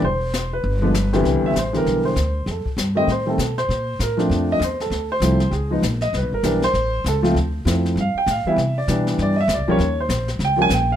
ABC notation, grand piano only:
X:1
M:4/4
L:1/8
Q:"Swing" 1/4=197
K:C
V:1 name="Grand piano"
c3 B4 z | z e c _B2 c3 | [_A=A] z2 _e c A2 c- | c2 _B z2 _e c A- |
A c3 [G_A] z2 _e | B _B2 c3 A z | z4 f g f e- | e d2 z d [_e=e] d _d- |
_d c2 z g _a g f |]
V:2 name="Grand piano"
z4 z [D,F,_A,B,] z [C,,D,E,G,B,]- | [C,,D,E,G,B,]2 z [D,E,G,B,]3 z2 | z3 [_E,G,A,C] z [E,G,A,C] z2 | z3 [F,A,CD]3 z2 |
z2 [F,A,CE] z2 [F,_A,_C_E] z2 | z2 [E,G,B,D] z4 [^E,A,C^E] | z2 [F,A,CE]2 z3 [E,G,B,E] | z2 [E,G,B,D]3 z2 [F,G,_B,_D] |
z4 z [F,G,_B,_D] z2 |]